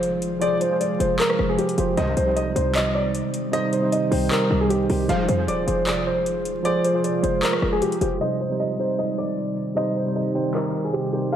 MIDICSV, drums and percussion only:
0, 0, Header, 1, 2, 480
1, 0, Start_track
1, 0, Key_signature, -3, "minor"
1, 0, Tempo, 389610
1, 513, Time_signature, 4, 2, 24, 8
1, 13994, End_track
2, 0, Start_track
2, 0, Title_t, "Drums"
2, 35, Note_on_c, 9, 42, 75
2, 158, Note_off_c, 9, 42, 0
2, 271, Note_on_c, 9, 42, 78
2, 394, Note_off_c, 9, 42, 0
2, 512, Note_on_c, 9, 42, 81
2, 635, Note_off_c, 9, 42, 0
2, 752, Note_on_c, 9, 42, 71
2, 875, Note_off_c, 9, 42, 0
2, 995, Note_on_c, 9, 42, 82
2, 1118, Note_off_c, 9, 42, 0
2, 1235, Note_on_c, 9, 42, 85
2, 1358, Note_off_c, 9, 42, 0
2, 1471, Note_on_c, 9, 39, 108
2, 1476, Note_on_c, 9, 42, 76
2, 1595, Note_off_c, 9, 39, 0
2, 1599, Note_off_c, 9, 42, 0
2, 1599, Note_on_c, 9, 37, 102
2, 1712, Note_off_c, 9, 37, 0
2, 1712, Note_on_c, 9, 37, 70
2, 1835, Note_off_c, 9, 37, 0
2, 1952, Note_on_c, 9, 42, 66
2, 2076, Note_off_c, 9, 42, 0
2, 2080, Note_on_c, 9, 42, 65
2, 2191, Note_off_c, 9, 42, 0
2, 2191, Note_on_c, 9, 42, 77
2, 2315, Note_off_c, 9, 42, 0
2, 2433, Note_on_c, 9, 42, 80
2, 2556, Note_off_c, 9, 42, 0
2, 2673, Note_on_c, 9, 42, 68
2, 2796, Note_off_c, 9, 42, 0
2, 2915, Note_on_c, 9, 42, 79
2, 3038, Note_off_c, 9, 42, 0
2, 3155, Note_on_c, 9, 42, 81
2, 3278, Note_off_c, 9, 42, 0
2, 3391, Note_on_c, 9, 39, 111
2, 3396, Note_on_c, 9, 42, 76
2, 3515, Note_off_c, 9, 39, 0
2, 3519, Note_off_c, 9, 42, 0
2, 3875, Note_on_c, 9, 42, 73
2, 3998, Note_off_c, 9, 42, 0
2, 4111, Note_on_c, 9, 42, 79
2, 4234, Note_off_c, 9, 42, 0
2, 4353, Note_on_c, 9, 42, 83
2, 4476, Note_off_c, 9, 42, 0
2, 4593, Note_on_c, 9, 42, 70
2, 4716, Note_off_c, 9, 42, 0
2, 4835, Note_on_c, 9, 42, 78
2, 4958, Note_off_c, 9, 42, 0
2, 5075, Note_on_c, 9, 46, 63
2, 5198, Note_off_c, 9, 46, 0
2, 5311, Note_on_c, 9, 39, 114
2, 5316, Note_on_c, 9, 42, 77
2, 5435, Note_off_c, 9, 39, 0
2, 5439, Note_off_c, 9, 42, 0
2, 5795, Note_on_c, 9, 42, 75
2, 5918, Note_off_c, 9, 42, 0
2, 6032, Note_on_c, 9, 46, 56
2, 6155, Note_off_c, 9, 46, 0
2, 6273, Note_on_c, 9, 42, 82
2, 6396, Note_off_c, 9, 42, 0
2, 6511, Note_on_c, 9, 42, 69
2, 6635, Note_off_c, 9, 42, 0
2, 6756, Note_on_c, 9, 42, 80
2, 6879, Note_off_c, 9, 42, 0
2, 6995, Note_on_c, 9, 42, 83
2, 7118, Note_off_c, 9, 42, 0
2, 7232, Note_on_c, 9, 39, 108
2, 7236, Note_on_c, 9, 42, 77
2, 7355, Note_off_c, 9, 39, 0
2, 7360, Note_off_c, 9, 42, 0
2, 7715, Note_on_c, 9, 42, 76
2, 7838, Note_off_c, 9, 42, 0
2, 7951, Note_on_c, 9, 42, 80
2, 8074, Note_off_c, 9, 42, 0
2, 8192, Note_on_c, 9, 42, 78
2, 8316, Note_off_c, 9, 42, 0
2, 8432, Note_on_c, 9, 42, 70
2, 8556, Note_off_c, 9, 42, 0
2, 8675, Note_on_c, 9, 42, 79
2, 8799, Note_off_c, 9, 42, 0
2, 8916, Note_on_c, 9, 42, 82
2, 9039, Note_off_c, 9, 42, 0
2, 9152, Note_on_c, 9, 39, 108
2, 9157, Note_on_c, 9, 42, 78
2, 9275, Note_off_c, 9, 39, 0
2, 9279, Note_on_c, 9, 37, 106
2, 9280, Note_off_c, 9, 42, 0
2, 9393, Note_off_c, 9, 37, 0
2, 9393, Note_on_c, 9, 37, 67
2, 9516, Note_off_c, 9, 37, 0
2, 9633, Note_on_c, 9, 42, 67
2, 9756, Note_off_c, 9, 42, 0
2, 9760, Note_on_c, 9, 42, 65
2, 9872, Note_off_c, 9, 42, 0
2, 9872, Note_on_c, 9, 42, 79
2, 9995, Note_off_c, 9, 42, 0
2, 10113, Note_on_c, 9, 42, 76
2, 10236, Note_off_c, 9, 42, 0
2, 10352, Note_on_c, 9, 42, 64
2, 10475, Note_off_c, 9, 42, 0
2, 10596, Note_on_c, 9, 42, 75
2, 10719, Note_off_c, 9, 42, 0
2, 10835, Note_on_c, 9, 42, 79
2, 10958, Note_off_c, 9, 42, 0
2, 11077, Note_on_c, 9, 42, 70
2, 11201, Note_off_c, 9, 42, 0
2, 11556, Note_on_c, 9, 42, 73
2, 11679, Note_off_c, 9, 42, 0
2, 11791, Note_on_c, 9, 42, 72
2, 11915, Note_off_c, 9, 42, 0
2, 12033, Note_on_c, 9, 42, 76
2, 12157, Note_off_c, 9, 42, 0
2, 12273, Note_on_c, 9, 42, 69
2, 12396, Note_off_c, 9, 42, 0
2, 12516, Note_on_c, 9, 42, 73
2, 12639, Note_off_c, 9, 42, 0
2, 12756, Note_on_c, 9, 42, 81
2, 12879, Note_off_c, 9, 42, 0
2, 12992, Note_on_c, 9, 39, 104
2, 12996, Note_on_c, 9, 42, 75
2, 13115, Note_off_c, 9, 39, 0
2, 13119, Note_off_c, 9, 42, 0
2, 13475, Note_on_c, 9, 42, 71
2, 13599, Note_off_c, 9, 42, 0
2, 13712, Note_on_c, 9, 42, 73
2, 13835, Note_off_c, 9, 42, 0
2, 13953, Note_on_c, 9, 42, 73
2, 13994, Note_off_c, 9, 42, 0
2, 13994, End_track
0, 0, End_of_file